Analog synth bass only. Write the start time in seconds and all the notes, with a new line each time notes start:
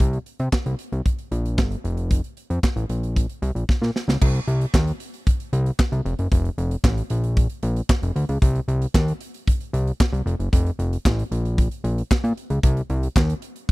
0.00 C2
0.40 C3
0.66 C2
0.92 C2
1.31 A#1
1.58 G1
1.84 F1
2.50 F2
2.76 A1
2.90 A#1
3.42 C2
3.55 A#1
3.82 A#2
4.08 C#2
4.22 C2
4.47 C2
4.74 D#2
5.53 C2
5.92 C2
6.05 F1
6.19 F#1
6.32 F1
6.58 F1
6.84 A1
7.10 A#1
7.63 A#1
8.02 F1
8.16 D2
8.29 C#2
8.42 C2
8.68 C2
8.94 D#2
9.73 C2
10.13 C2
10.26 F1
10.39 F#1
10.53 F1
10.79 F1
11.05 A1
11.31 A#1
11.84 A#1
12.24 A#2
12.50 C#2
12.63 C2
12.90 C2
13.16 D#2